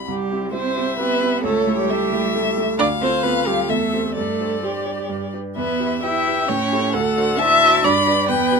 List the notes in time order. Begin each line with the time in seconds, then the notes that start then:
Already playing: C4 G4
0.08 C2 G3 G4
0.31 C4 E4 G4
0.54 C4 E4 G4 C5 E5
0.77 C4 E4 G4
0.99 B3 C4 E4 G4 B4
1.22 C4 E4 G4
1.43 C#2 A3 A4 C#5
1.67 A3 E4 A4
1.78 G3 G4
1.90 A3 E4 A4 E5
2.12 A3 E4 A4
2.35 A3 E4 A4
2.57 A3 E4 A4
2.78 D2 D4 D5 F5
3.01 C4 F4 A4 C5
3.23 B3 C4 F4 A4 B4
3.46 G3 C4 F4 G4 A4
3.69 E2 A3 A4 E5
3.93 C4 G4 C5
4.16 G2 A3 A4 D5
4.40 D4 G4 C5
4.62 G3 D4 G4 C5
4.85 D4 G4 C5
5.09 G2
5.34 D4 G4 B4
5.56 E2 B3 B4 E5
5.79 E4 G4 B4
6.03 E4 G4 B4 E5 G5
6.27 E4 G4 B4
6.49 A2 C#4 C#5
6.72 E4 G4 A4
6.93 D2 A3 A4 F#5
7.17 D4 F#4 C5
7.39 D4 E4 F#4 C5 E5 A5
7.63 D4 F#4 C5
7.84 G2 D4 D5 B5
8.07 D4 G4 B4
8.28 E2 B3 B4 G5
8.51 D4 G4 B4